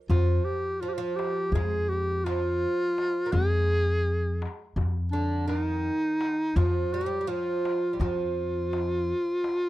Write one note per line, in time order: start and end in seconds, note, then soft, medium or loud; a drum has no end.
0.09 0.38 F2 loud
0.09 0.81 F3 medium
0.09 0.46 F4 loud
0.09 darbuka dum medium
0.45 0.82 G4 medium
0.45 darbuka ka soft
0.81 0.97 F3 medium
0.81 0.90 F4 medium
0.89 0.95 G4 medium
0.94 1.18 F4 medium
0.98 1.56 F3 medium
1.16 1.55 G4 medium
1.16 darbuka tek medium
1.52 2.64 F2 medium
1.52 2.22 G#3 medium
1.52 1.91 G#4 loud
1.52 darbuka dum medium
1.89 2.26 G4 medium
1.89 darbuka ka soft
2.24 3.29 F3 medium
2.24 3.34 F4 loud
2.24 darbuka tek medium
2.44 darbuka ka soft
2.98 darbuka tek medium
3.26 3.32 A#3 medium
3.32 4.45 F2 loud
3.32 4.72 G#3 medium
3.32 4.76 G#4 loud
3.32 darbuka dum medium
3.70 darbuka ka soft
4.42 darbuka tek medium
4.76 5.88 F2 medium
4.76 darbuka dum medium
5.12 5.47 D3 medium
5.12 5.48 D4 medium
5.32 darbuka ka soft
5.48 6.56 D#3 medium
5.48 5.61 D4 loud
5.48 darbuka tek medium
5.61 6.58 D#4 loud
5.68 darbuka ka soft
6.21 darbuka tek medium
6.56 6.84 F2 loud
6.56 6.93 F3 medium
6.56 6.95 F4 loud
6.56 darbuka dum medium
6.93 7.00 G3 medium
6.93 7.30 G4 medium
6.93 darbuka ka soft
7.01 7.07 F3 medium
7.06 7.20 G3 medium
7.21 7.28 G3 medium
7.27 7.95 F3 medium
7.27 8.00 F4 medium
7.65 darbuka tek medium
7.93 8.00 G3 medium
8.00 9.11 F2 medium
8.00 9.69 F3 medium
8.00 9.69 F4 loud
8.00 darbuka dum medium
8.37 darbuka ka soft
8.55 darbuka ka soft
8.73 darbuka tek medium
8.91 darbuka ka soft
9.44 darbuka tek medium